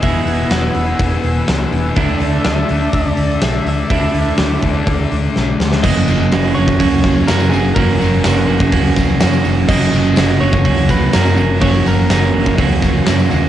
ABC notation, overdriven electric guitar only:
X:1
M:4/4
L:1/8
Q:1/4=124
K:F#mix
V:1 name="Overdriven electric guitar"
[E,,B,,E,G,B,G]8 | [=D,=A,=DE]8 | [=D,=A,=DE]8 | [F,,C,E,A,CF] [E,A,CF] [E,A,CF] [E,A,CF] [F,,C,E,A,CF]2 [E,A,CF] [E,A,CF] |
[F,,C,E,A,CF] [E,A,CF] [E,A,CF] [E,A,CF] [F,,C,E,A,CF]2 [E,A,CF] [E,A,CF] | [F,,C,E,A,CF] [E,A,CF] [E,A,CF] [E,A,CF] [F,,C,E,A,CF]2 [E,A,CF] [E,A,CF] | [F,,C,E,A,CF] [E,A,CF] [E,A,CF] [E,A,CF] [F,,C,E,A,CF]2 [E,A,CF] [E,A,CF] |]